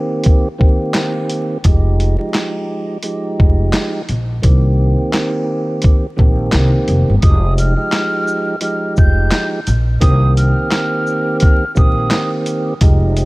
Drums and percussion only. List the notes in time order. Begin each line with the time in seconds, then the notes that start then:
0.24 kick, closed hi-hat
0.61 kick
0.94 snare, clap, closed hi-hat
1.29 closed hi-hat
1.64 kick, closed hi-hat
2.00 closed hi-hat
2.34 snare, clap, closed hi-hat
3.03 closed hi-hat
3.40 kick
3.73 snare, clap, closed hi-hat
4.09 closed hi-hat
4.43 kick, closed hi-hat
5.13 snare, clap, closed hi-hat
5.82 kick, closed hi-hat
6.19 kick
6.52 snare, clap, closed hi-hat
6.88 closed hi-hat
7.22 kick, closed hi-hat
7.58 closed hi-hat, shaker
7.92 snare, clap, closed hi-hat
8.27 shaker
8.61 closed hi-hat
8.97 kick, shaker
9.31 snare, clap, closed hi-hat
9.67 closed hi-hat, shaker
10.01 kick, closed hi-hat
10.37 closed hi-hat, shaker
10.71 snare, clap, closed hi-hat
11.07 shaker
11.40 kick, closed hi-hat
11.76 kick, shaker
12.11 snare, clap, closed hi-hat
12.46 closed hi-hat, shaker
12.81 kick, closed hi-hat
13.17 closed hi-hat, shaker